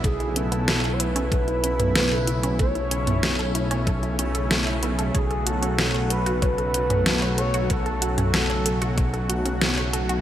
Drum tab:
HH |xxxxxxxxxxxxxxxx|xxxxxxxxxxxxxxxx|xxxxxxxxxxxxxxxx|xxxxxxxxxxxxxxxx|
SD |----o-------o---|----o-------o---|----o-------o---|----o-------o---|
T2 |-----------o----|---o------------|-----------o----|---o------------|
BD |o-------o-------|o-------o-------|o-------o-------|o-------o-------|